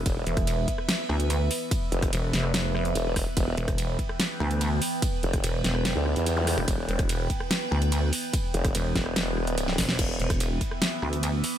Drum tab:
CC |----------------|----------------|----------------|----------------|
RD |x---x---x---x---|x---x---x---x---|x---x---x---x---|x---x---x---x---|
HH |x-xxx-x-x--xx-o-|x-xxx-x-x--xx-o-|x-xxx-x-x--xx-o-|x-xxx-x-x--xx-o-|
SD |---r---ro-r-----|---r--oro-r---r-|---r---ro-r-----|---r--oro-r---r-|
BD |o--o--o---------|o--o----------o-|o--o--o---------|o--o------------|

CC |----------------|----------------|x---------------|
RD |x---x---x---x---|x---x---x---x---|x---x---x---x---|
HH |x-xxx-x-x--xx-o-|x-xxx-x-x--xx-o-|x-xxx-x-x--xx-o-|
SD |---r---ro-r-----|---r--oro-r--ooo|---r---ro-r-----|
BD |o--o--o---------|o--o--o-------o-|o--o--o---------|